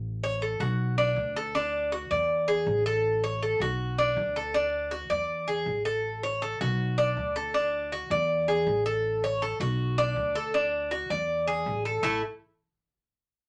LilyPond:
<<
  \new Staff \with { instrumentName = "Cuban tres" } { \time 4/4 \key a \major \tempo 4 = 160 r8 cis''8 a'8 fis'4 d'4 a'8 | d'4 fis'8 d''4 gis'4 a'8~ | a'8 cis''8 a'8 fis'4 d'4 a'8 | d'4 fis'8 d''4 gis'4 a'8~ |
a'8 cis''8 a'8 fis'4 d'4 a'8 | d'4 fis'8 d''4 gis'4 a'8~ | a'8 cis''8 a'8 fis'4 d'4 a'8 | d'4 fis'8 d''4 gis'4 a'8 |
<a e' a'>8 r2. r8 | }
  \new Staff \with { instrumentName = "Upright bass" } { \clef bass \time 4/4 \key a \major a,,4. b,,4. d,4~ | d,4. e,4. a,,4~ | a,,4. b,,4. d,4~ | d,4. e,4. a,,4~ |
a,,4. b,,4. d,4~ | d,4. e,4. a,,4~ | a,,4. b,,4. d,4~ | d,4. e,4. a,,4 |
a,,8 r2. r8 | }
>>